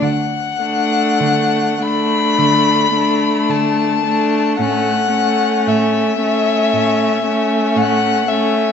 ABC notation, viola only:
X:1
M:4/4
L:1/8
Q:1/4=56
K:D
V:1 name="Viola"
z A,2 A,2 A,2 A, | A, A,2 A,2 A,2 A, |]